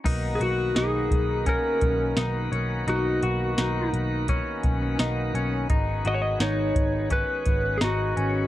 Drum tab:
CC |x-------|--------|--------|
HH |xxxxxxxx|xxxxxxxx|xxxxxxxx|
SD |--o---o-|--o---o-|--o---o-|
BD |o--ooo--|----oo--|o--ooo--|